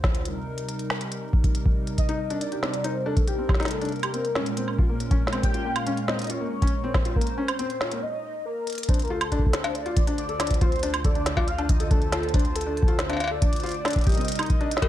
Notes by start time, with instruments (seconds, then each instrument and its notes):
Already playing: analog synth pad D2 D3 F4 C5
0.04 kick, snare
0.15 closed hi-hat
0.25 analog synth pad C3 G3 D#4 A#4, closed hi-hat
0.58 closed hi-hat
0.69 closed hi-hat
0.79 closed hi-hat
0.90 snare
1.01 closed hi-hat
1.12 closed hi-hat
1.33 kick
1.44 kick, closed hi-hat
1.55 closed hi-hat
1.66 kick
1.87 closed hi-hat
1.98 soft synth lead D#5, kick, closed hi-hat
2.09 felt piano D#4, closed hi-hat
2.30 felt piano D4, closed hi-hat
2.41 soft synth lead D5, closed hi-hat
2.52 felt piano G4, closed hi-hat
2.63 felt piano C4, snare
2.74 closed hi-hat
2.84 felt piano D#4, soft synth lead C5, closed hi-hat
3.06 felt piano D4, soft synth lead A4
3.17 kick, closed hi-hat
3.28 felt piano G4, soft synth lead G4, closed hi-hat
3.38 felt piano C4
3.49 kick, snare, high woodblock
3.54 snare
3.60 felt piano D#4, snare, closed hi-hat
3.63 snare, closed hi-hat
3.65 closed hi-hat
3.68 closed hi-hat
3.71 soft synth lead A4, closed hi-hat
3.81 felt piano D4, closed hi-hat
3.85 closed hi-hat
3.89 closed hi-hat
3.92 soft synth lead A#4, closed hi-hat
3.96 closed hi-hat
3.99 closed hi-hat
4.03 felt piano G4, closed hi-hat, high woodblock
4.14 felt piano C4, closed hi-hat
4.25 closed hi-hat
4.35 analog synth pad A#2 G#3 C#4, felt piano C#4, snare
4.46 closed hi-hat
4.57 felt piano C4, closed hi-hat
4.68 high woodblock
4.79 felt piano F4, kick
4.89 felt piano A#3
5.00 closed hi-hat
5.11 felt piano C#4, kick, closed hi-hat
5.27 snare
5.33 felt piano C4, closed hi-hat, high woodblock
5.43 soft synth lead G5, kick, closed hi-hat
5.54 felt piano F4, closed hi-hat
5.65 felt piano A#3
5.76 soft synth lead F5, closed hi-hat, high woodblock
5.87 felt piano C#4, closed hi-hat
5.97 closed hi-hat
6.08 felt piano C4, soft synth lead D#5, snare
6.19 closed hi-hat
6.22 closed hi-hat
6.24 closed hi-hat
6.27 soft synth lead C#5, closed hi-hat
6.30 felt piano F4, closed hi-hat
6.40 felt piano A#3
6.62 felt piano C#4, kick, closed hi-hat
6.67 closed hi-hat
6.84 felt piano C4
6.89 soft synth lead C#5
6.94 analog synth pad C5, soft synth lead C5, kick, snare, high woodblock
7.05 felt piano F4, closed hi-hat
7.16 felt piano A#3, soft synth lead A#4, kick
7.21 closed hi-hat
7.27 closed hi-hat
7.38 felt piano C#4
7.48 soft synth lead C5, closed hi-hat, high woodblock
7.59 felt piano C4, closed hi-hat
7.70 closed hi-hat
7.81 felt piano F4, soft synth lead C#5, snare
7.92 felt piano A#3, closed hi-hat
8.02 soft synth lead D#5
8.46 soft synth lead A#4
8.67 closed hi-hat
8.70 closed hi-hat
8.73 closed hi-hat
8.75 closed hi-hat
8.78 closed hi-hat
8.83 closed hi-hat
8.89 analog synth pad D2 D3 F4 C5, felt piano D4, soft synth lead C5, kick, closed hi-hat
8.94 closed hi-hat
8.99 closed hi-hat
9.02 soft synth lead A#4, closed hi-hat
9.05 closed hi-hat
9.08 felt piano F4, soft synth lead A4, closed hi-hat
9.21 closed hi-hat, high woodblock
9.32 felt piano D4, kick, closed hi-hat
9.39 kick
9.46 kick
9.53 felt piano A4, soft synth lead C5, snare, closed hi-hat
9.64 felt piano D4, closed hi-hat, cowbell
9.75 soft synth lead D5, closed hi-hat
9.86 felt piano F4, closed hi-hat
9.97 kick, closed hi-hat
10.07 felt piano D4, closed hi-hat
10.18 soft synth lead D5, closed hi-hat
10.29 felt piano A4, closed hi-hat
10.40 felt piano D4, snare, closed hi-hat, high woodblock
10.47 closed hi-hat
10.51 kick, closed hi-hat
10.54 closed hi-hat
10.61 felt piano F4, soft synth lead C5, kick, closed hi-hat
10.72 closed hi-hat
10.76 closed hi-hat
10.79 closed hi-hat
10.83 felt piano D4, closed hi-hat
10.87 closed hi-hat
10.90 closed hi-hat
10.94 closed hi-hat, high woodblock
11.04 felt piano A4, soft synth lead D5, kick, closed hi-hat
11.15 felt piano D4, closed hi-hat
11.26 snare, closed hi-hat
11.37 felt piano F4, kick, cowbell
11.48 soft synth lead F5, closed hi-hat
11.58 felt piano D4, closed hi-hat, high woodblock
11.69 soft synth lead D#5, kick, closed hi-hat
11.80 felt piano A4, closed hi-hat
11.91 felt piano D4, soft synth lead A4, kick, closed hi-hat
12.02 closed hi-hat
12.12 felt piano F4, snare, closed hi-hat, high woodblock
12.23 closed hi-hat
12.29 closed hi-hat
12.34 felt piano D4, soft synth lead C5, kick, closed hi-hat
12.39 closed hi-hat
12.45 closed hi-hat
12.56 felt piano A4, soft synth lead A4, closed hi-hat
12.61 closed hi-hat
12.66 felt piano D4
12.77 closed hi-hat
12.83 kick
12.88 felt piano F4, closed hi-hat
12.99 soft synth lead C5, snare, closed hi-hat
13.10 felt piano D4, closed hi-hat, cowbell
13.13 cowbell
13.17 closed hi-hat, cowbell
13.20 soft synth lead D5, cowbell
13.24 cowbell
13.28 felt piano A4, cowbell
13.42 felt piano D4, kick, closed hi-hat
13.53 closed hi-hat
13.56 closed hi-hat
13.60 closed hi-hat
13.63 felt piano F4, soft synth lead D5, closed hi-hat
13.66 closed hi-hat
13.69 closed hi-hat
13.71 closed hi-hat
13.85 felt piano D4, snare, closed hi-hat, high woodblock
13.88 closed hi-hat
13.90 closed hi-hat
13.93 closed hi-hat
13.96 kick, closed hi-hat
13.99 closed hi-hat
14.01 closed hi-hat
14.04 analog synth pad D#4, kick, closed hi-hat
14.07 analog synth pad C3 G3 A#4, felt piano G4, soft synth lead D#5, closed hi-hat
14.09 closed hi-hat
14.12 closed hi-hat
14.14 closed hi-hat
14.17 felt piano C4, closed hi-hat
14.21 closed hi-hat
14.25 closed hi-hat
14.28 closed hi-hat
14.32 closed hi-hat
14.35 closed hi-hat
14.39 felt piano D#4, closed hi-hat, high woodblock
14.43 closed hi-hat
14.46 kick, closed hi-hat
14.50 closed hi-hat
14.61 felt piano D4, closed hi-hat
14.71 closed hi-hat
14.77 snare
14.82 felt piano G4, kick, closed hi-hat, cowbell